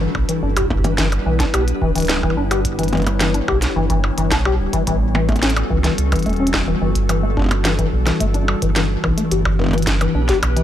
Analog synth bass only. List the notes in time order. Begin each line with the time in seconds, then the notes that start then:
0.15 B1
0.43 G1
1.26 B1
1.54 B1
1.82 D1
2.37 G1
3.48 B1
3.76 G1
4.18 G1
4.32 B1
4.59 D1
4.87 A1
5.71 C#2
5.98 C#2
6.26 E1
6.82 G1
7.93 B1
8.20 G1
8.62 G1
9.04 B1
9.31 G1
10.15 B1
10.43 B1